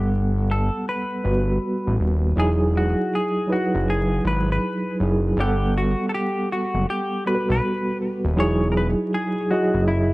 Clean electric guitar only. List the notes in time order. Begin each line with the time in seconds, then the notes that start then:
0.51 A4
0.89 B4
2.40 G#4
2.77 F#4
3.15 G#4
3.52 F#4
3.90 G#4
4.27 B4
4.52 B4
5.40 G4
5.78 F#4
6.09 A4
6.14 G4
6.52 F#4
6.90 G4
7.27 B4
7.52 B4
8.40 C#5
8.72 A#4
8.77 B4
9.14 G#4
9.51 F#4
9.88 E4